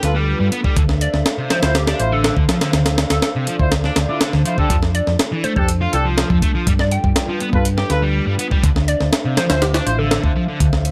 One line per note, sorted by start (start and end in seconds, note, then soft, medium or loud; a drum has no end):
0.00 0.33 D2 medium
0.00 0.75 G3 medium
0.00 10.91 D4 medium
0.00 0.73 F4 medium
0.00 0.15 F4 loud
0.00 10.91 A4 medium
0.00 0.15 A4 medium
0.00 0.75 B4 medium
0.00 0.15 B4 loud
0.00 snare soft
0.00 closed hi-hat medium
0.15 0.39 G3 medium
0.40 0.48 G2 loud
0.40 0.47 G3 medium
0.52 0.60 B3 loud
0.52 closed hi-hat medium
0.64 0.75 G3 loud
0.64 kick loud
0.76 1.06 D2 loud
0.76 0.81 D3 medium
0.76 4.66 C5 medium
0.76 2.72 E5 medium
0.76 4.66 F5 medium
0.76 kick loud
0.76 closed hi-hat medium
0.89 snare medium
1.01 1.20 D5 medium
1.01 closed hi-hat medium
1.14 1.21 D2 medium
1.14 snare soft
1.26 snare loud
1.26 closed hi-hat medium
1.38 1.50 C3 medium
1.50 1.58 F3 loud
1.50 1.59 C5 medium
1.50 snare loud
1.50 closed hi-hat medium
1.63 1.92 D2 medium
1.63 1.75 E4 medium
1.63 1.75 F4 medium
1.63 1.71 C5 medium
1.63 1.75 C5 loud
1.63 snare loud
1.63 closed hi-hat medium
1.75 1.83 G4 medium
1.75 snare loud
1.75 closed hi-hat medium
1.87 1.99 D4 loud
1.87 1.95 G4 medium
1.87 snare loud
1.87 closed hi-hat medium
2.00 2.29 A1 medium
2.00 2.12 E4 loud
2.00 2.12 F4 medium
2.00 2.12 C5 loud
2.00 closed hi-hat medium
2.12 2.35 D3 medium
2.12 2.20 A4 medium
2.24 2.32 A4 medium
2.24 snare loud
2.24 closed hi-hat medium
2.37 2.44 D2 medium
2.37 2.44 D3 medium
2.37 kick loud
2.49 2.57 F3 loud
2.49 snare loud
2.49 closed hi-hat medium
2.61 2.72 D3 loud
2.61 snare loud
2.61 closed hi-hat medium
2.73 3.03 D2 loud
2.73 2.78 D3 medium
2.73 4.68 D5 medium
2.73 snare loud
2.73 closed hi-hat medium
2.86 snare loud
2.86 closed hi-hat medium
2.98 snare loud
2.98 closed hi-hat medium
3.10 3.18 D2 medium
3.10 3.18 A4 medium
3.10 snare loud
3.10 closed hi-hat medium
3.22 3.31 A4 medium
3.22 snare loud
3.22 closed hi-hat medium
3.36 3.47 C3 medium
3.47 3.55 F3 medium
3.47 closed hi-hat medium
3.59 3.89 D2 medium
3.59 3.71 E4 medium
3.59 3.71 F4 medium
3.59 3.71 C5 loud
3.59 kick medium
3.72 snare loud
3.72 closed hi-hat medium
3.84 3.96 D4 loud
3.84 snare soft
3.96 4.04 D2 medium
3.96 snare loud
3.96 closed hi-hat medium
4.09 4.32 D3 medium
4.09 4.21 E4 medium
4.09 4.21 F4 medium
4.09 4.21 D5 medium
4.21 snare loud
4.21 closed hi-hat medium
4.33 4.41 D2 loud
4.33 4.41 D3 medium
4.33 snare medium
4.45 4.53 F3 loud
4.45 4.56 E4 medium
4.45 4.56 F4 medium
4.45 4.56 C5 loud
4.45 closed hi-hat medium
4.58 4.69 D3 loud
4.58 4.77 D4 medium
4.58 4.77 G4 medium
4.58 4.77 A4 loud
4.58 kick medium
4.70 5.00 F2 medium
4.70 4.75 F3 medium
4.70 8.60 F4 medium
4.70 kick loud
4.70 closed hi-hat medium
4.83 snare medium
4.95 5.13 D5 medium
4.95 closed hi-hat medium
5.07 5.15 F2 medium
5.07 snare soft
5.19 snare loud
5.19 closed hi-hat medium
5.32 5.43 E3 medium
5.44 5.52 A3 loud
5.44 5.52 C5 medium
5.44 closed hi-hat medium
5.56 5.86 F2 medium
5.56 5.68 D4 medium
5.56 5.68 G4 medium
5.56 5.68 A4 loud
5.56 5.64 C5 medium
5.56 kick medium
5.68 closed hi-hat medium
5.81 5.92 F4 loud
5.93 6.23 C2 medium
5.93 6.05 D4 loud
5.93 6.05 G4 medium
5.93 6.05 A4 loud
5.93 closed hi-hat medium
6.06 6.29 F3 medium
6.18 snare loud
6.18 closed hi-hat medium
6.30 6.38 F2 loud
6.30 6.38 F3 medium
6.30 kick loud
6.42 6.50 A3 loud
6.42 kick loud
6.42 closed hi-hat medium
6.55 6.66 F3 loud
6.67 6.96 G2 loud
6.67 6.72 G3 medium
6.67 8.62 G3 medium
6.67 8.62 B4 medium
6.67 kick loud
6.67 closed hi-hat medium
6.79 6.89 D5 loud
6.79 snare medium
6.91 7.41 G5 medium
6.91 closed hi-hat medium
7.04 7.12 G2 medium
7.04 kick loud
7.16 snare loud
7.16 closed hi-hat medium
7.29 7.40 F3 medium
7.40 7.48 B3 medium
7.40 closed hi-hat medium
7.53 7.83 G2 medium
7.53 7.65 F4 medium
7.53 7.65 A4 medium
7.53 7.65 B4 loud
7.53 kick medium
7.65 closed hi-hat medium
7.78 7.89 G4 loud
7.78 snare medium
7.90 8.20 D2 medium
7.90 8.02 F4 loud
7.90 8.02 A4 medium
7.90 8.02 B4 loud
7.90 snare soft
7.90 closed hi-hat medium
8.02 8.26 G3 medium
8.27 8.34 G2 loud
8.27 8.34 G3 medium
8.39 8.47 B3 loud
8.39 closed hi-hat medium
8.51 8.62 G3 loud
8.51 kick loud
8.63 8.93 D2 loud
8.63 8.68 D3 medium
8.63 10.91 C5 medium
8.63 10.91 E5 medium
8.63 10.91 F5 medium
8.63 kick loud
8.63 closed hi-hat medium
8.76 snare medium
8.88 9.06 D5 medium
8.88 closed hi-hat medium
9.00 9.08 D2 medium
9.00 snare soft
9.13 snare loud
9.13 closed hi-hat medium
9.25 9.36 C3 medium
9.37 9.45 F3 loud
9.37 9.45 C5 medium
9.37 snare loud
9.37 closed hi-hat medium
9.49 9.79 D2 medium
9.49 9.61 E4 loud
9.49 9.61 F4 medium
9.49 9.61 C5 loud
9.49 9.58 C5 medium
9.49 snare loud
9.49 closed hi-hat medium
9.62 9.70 G4 medium
9.62 snare loud
9.62 closed hi-hat medium
9.74 9.86 D4 loud
9.74 9.82 G4 medium
9.74 snare loud
9.74 closed hi-hat medium
9.86 10.16 A1 medium
9.86 9.98 E4 loud
9.86 9.98 F4 medium
9.86 9.98 C5 loud
9.86 closed hi-hat medium
9.98 10.22 D3 medium
9.98 10.07 A4 medium
10.11 10.19 A4 medium
10.11 snare loud
10.11 closed hi-hat medium
10.23 10.31 D2 medium
10.23 10.31 D3 medium
10.23 kick loud
10.36 10.43 F3 loud
10.48 10.59 D3 loud
10.60 10.90 D2 loud
10.60 10.65 D3 medium
10.60 kick loud
10.60 closed hi-hat medium
10.73 snare medium
10.85 closed hi-hat medium